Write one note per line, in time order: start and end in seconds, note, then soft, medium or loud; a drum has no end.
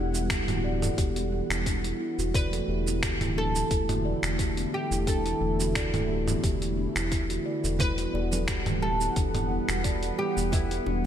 0.00 0.49 E1 loud
0.00 11.06 E3 medium
0.00 2.31 G3 medium
0.00 2.31 B3 medium
0.00 0.12 D4 medium
0.00 1.62 E4 medium
0.00 2.31 F#5 medium
0.14 0.29 E4 medium
0.14 shaker medium
0.30 finger snap medium
0.30 kick loud
0.30 closed hi-hat medium
0.30 shaker medium
0.48 0.90 D1 loud
0.48 0.63 F#4 medium
0.48 closed hi-hat soft
0.48 mid tom medium
0.48 shaker soft
0.64 0.81 D5 medium
0.82 0.97 A4 medium
0.82 mid tom medium
0.82 shaker medium
0.98 1.42 E1 medium
0.98 1.15 G4 medium
0.98 kick loud
0.98 closed hi-hat medium
0.98 shaker medium
1.16 1.31 B3 medium
1.16 closed hi-hat soft
1.16 shaker soft
1.32 1.50 G4 medium
1.50 1.93 E1 loud
1.50 1.65 E4 medium
1.50 finger snap medium
1.50 shaker medium
1.66 1.83 D4 medium
1.66 kick loud
1.66 closed hi-hat medium
1.66 shaker medium
1.84 1.99 E4 medium
1.84 closed hi-hat soft
1.84 shaker soft
2.01 2.17 E4 medium
2.19 2.61 E1 medium
2.19 2.34 F#4 medium
2.19 shaker medium
2.34 7.76 D3 medium
2.34 7.76 A3 medium
2.34 7.76 E4 medium
2.34 3.38 B4 loud
2.34 2.51 D5 medium
2.34 kick loud
2.34 closed hi-hat medium
2.34 shaker medium
2.53 2.67 A4 medium
2.53 closed hi-hat soft
2.53 shaker soft
2.68 3.22 E1 loud
2.68 2.85 G4 medium
2.87 3.01 B3 medium
2.87 shaker medium
3.03 finger snap medium
3.03 kick loud
3.03 closed hi-hat medium
3.03 shaker medium
3.21 3.63 D1 medium
3.21 3.35 E4 medium
3.21 closed hi-hat soft
3.21 mid tom medium
3.21 shaker soft
3.37 3.53 D4 medium
3.37 4.74 A4 loud
3.55 3.70 E4 medium
3.55 shaker medium
3.71 4.15 E1 medium
3.71 3.87 E4 medium
3.71 kick loud
3.71 closed hi-hat medium
3.71 shaker medium
3.89 4.04 F#4 medium
3.89 closed hi-hat soft
3.89 mid tom medium
3.89 shaker soft
4.05 4.22 D5 medium
4.23 4.66 E1 loud
4.23 4.38 A4 medium
4.23 finger snap medium
4.23 shaker medium
4.39 4.56 G4 medium
4.39 kick loud
4.39 closed hi-hat medium
4.39 shaker medium
4.57 4.72 B3 medium
4.57 closed hi-hat soft
4.57 shaker soft
4.73 4.91 G4 medium
4.73 5.08 G4 medium
4.91 5.34 E1 medium
4.91 5.06 E4 medium
4.91 shaker medium
5.07 5.24 D4 medium
5.07 7.08 A4 medium
5.07 kick loud
5.07 closed hi-hat medium
5.07 shaker medium
5.26 5.40 E4 medium
5.26 closed hi-hat soft
5.26 shaker soft
5.41 5.95 E1 loud
5.41 5.58 E4 medium
5.60 5.75 F#4 medium
5.60 shaker medium
5.75 5.92 D5 medium
5.75 finger snap medium
5.75 kick loud
5.75 closed hi-hat medium
5.75 shaker medium
5.94 6.36 D1 medium
5.94 6.08 A4 medium
5.94 closed hi-hat soft
5.94 mid tom medium
5.94 shaker soft
6.10 6.26 G4 medium
6.28 6.42 B3 medium
6.28 mid tom medium
6.28 shaker medium
6.44 6.87 E1 medium
6.44 6.61 G4 medium
6.44 kick loud
6.44 closed hi-hat medium
6.44 shaker medium
6.62 6.76 E4 medium
6.62 closed hi-hat soft
6.62 shaker soft
6.77 6.94 D4 medium
6.96 7.38 E1 loud
6.96 7.10 E4 medium
6.96 finger snap medium
6.96 shaker medium
7.12 7.28 E4 medium
7.12 kick loud
7.12 closed hi-hat medium
7.12 shaker medium
7.30 7.45 F#4 medium
7.30 closed hi-hat soft
7.30 shaker soft
7.46 7.62 D5 medium
7.64 8.07 E1 loud
7.64 7.78 A4 medium
7.64 shaker medium
7.79 11.06 G3 medium
7.79 11.06 B3 medium
7.79 7.96 E4 medium
7.79 11.06 B4 medium
7.79 8.82 B4 loud
7.79 11.06 F#5 medium
7.79 kick loud
7.79 closed hi-hat medium
7.79 low conga medium
7.79 shaker medium
7.98 8.13 F#4 medium
7.98 closed hi-hat soft
7.98 shaker soft
8.14 8.68 E1 loud
8.14 8.30 D5 medium
8.14 high bongo medium
8.32 8.47 A4 medium
8.32 high bongo medium
8.32 high conga medium
8.32 shaker medium
8.48 8.65 G4 medium
8.48 finger snap medium
8.48 kick loud
8.48 closed hi-hat medium
8.48 shaker medium
8.66 9.09 D1 loud
8.66 8.81 B3 medium
8.66 closed hi-hat soft
8.66 mid tom medium
8.66 shaker soft
8.82 9.00 G4 medium
8.82 10.15 A4 loud
9.00 9.15 E4 medium
9.00 high conga soft
9.00 shaker medium
9.16 9.60 E1 medium
9.16 9.33 D4 medium
9.16 kick loud
9.16 closed hi-hat medium
9.16 shaker medium
9.35 9.49 E4 medium
9.35 closed hi-hat soft
9.35 mid tom medium
9.35 shaker soft
9.50 9.67 E4 medium
9.69 10.11 E1 loud
9.69 9.84 F#4 medium
9.69 finger snap medium
9.69 shaker medium
9.84 10.01 D5 medium
9.84 kick loud
9.84 closed hi-hat medium
9.84 shaker medium
10.03 10.17 A4 medium
10.03 closed hi-hat soft
10.03 high bongo soft
10.03 shaker soft
10.18 10.35 G4 medium
10.18 10.50 G4 medium
10.18 high bongo medium
10.37 10.79 E1 medium
10.37 10.51 B3 medium
10.37 shaker medium
10.52 11.06 E4 medium
10.52 10.70 G4 medium
10.52 kick loud
10.52 closed hi-hat medium
10.52 low conga medium
10.52 shaker medium
10.71 10.85 E4 medium
10.71 closed hi-hat soft
10.71 shaker soft
10.86 11.06 E1 loud
10.86 11.03 D4 medium
10.86 high bongo medium